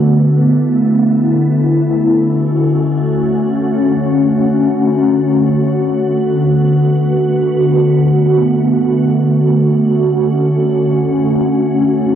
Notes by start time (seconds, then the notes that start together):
Already playing: D3 A3 B3
0.12 E4
1.99 D3 A3 C#4 F#4
5.74 B3
9.49 C#4